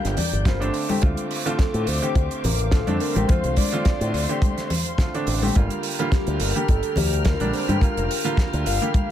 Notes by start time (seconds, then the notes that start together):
Already playing: D3 G3 A#3 G4 A#4 F5 G5 G6
0.05 G1, snare, closed hi-hat
0.17 D5, open hi-hat, low conga
0.33 G1, closed hi-hat
0.45 D3 G3 A#3 F4 C5, kick, snare, closed hi-hat
0.60 D3 A3 C4 D4, closed hi-hat
0.74 C5 F5 D6, open hi-hat
0.89 D3 A3 C4 G4, open hi-hat, high conga
1.02 D2 D3 A3 C4 F4, kick, closed hi-hat
1.17 closed hi-hat
1.31 open hi-hat
1.45 D3 A3 C4 F4, closed hi-hat
1.59 A4, kick, snare, closed hi-hat
1.74 A2, closed hi-hat
1.87 D2 C5, open hi-hat
2.02 D3 A3 C4 G4, closed hi-hat
2.15 D2, kick, closed hi-hat
2.31 closed hi-hat
2.44 A1 A#4, open hi-hat, low conga
2.59 closed hi-hat
2.71 D3 A3 C4 F4 A4, kick, snare, closed hi-hat
2.87 F2 D3 A3 C4 D4, closed hi-hat, high conga
3.00 A#4 C6, open hi-hat
3.15 A1 D3 A3 C4 G4, closed hi-hat, high conga
3.28 D3 A3 C4 F4 C5, kick, closed hi-hat, low conga
3.44 C2, closed hi-hat
3.56 D5, kick, open hi-hat, high conga
3.72 D3 A3 C4 F4, closed hi-hat
3.85 kick, snare, closed hi-hat
4.01 A2, closed hi-hat
4.14 D2, open hi-hat
4.29 D3 A3 C4 G4, closed hi-hat
4.42 kick, closed hi-hat, high conga
4.58 snare, closed hi-hat
4.70 open hi-hat, low conga
4.86 closed hi-hat
4.98 D3 A3 C4 F4, kick, snare, closed hi-hat
5.14 D3 A3 C4 D4, closed hi-hat
5.27 A1, open hi-hat
5.42 D3 A3 C4 G4, open hi-hat, high conga
5.55 G1 D3 G3 A#3 F4 A#4 G5 F6, kick, closed hi-hat
5.70 closed hi-hat
5.83 open hi-hat
5.99 D3 G3 A#3 F4, closed hi-hat
6.12 G4, kick, snare, closed hi-hat
6.27 D2, closed hi-hat
6.40 G1 A#4, open hi-hat
6.55 D3 G3 A#3 G4, closed hi-hat
6.68 G1 A4, kick, closed hi-hat
6.83 closed hi-hat
6.96 D2 G4, open hi-hat, low conga
7.13 closed hi-hat
7.24 D3 G3 A#3 F4 A#4, kick, snare, closed hi-hat
7.40 A#1 D3 G3 A#3 D4, closed hi-hat, high conga
7.53 C5, open hi-hat
7.68 G2 D3 G3 A#3 G4, closed hi-hat, high conga
7.81 D3 G3 A#3 F4 A#4, kick, closed hi-hat
7.97 F1, closed hi-hat
8.10 A#4, open hi-hat
8.24 D3 G3 A#3 F4, closed hi-hat
8.37 kick, snare, closed hi-hat
8.53 D2, closed hi-hat
8.66 G1 F5, open hi-hat
8.81 D3 G3 A#3 G4, closed hi-hat
8.94 kick, closed hi-hat, high conga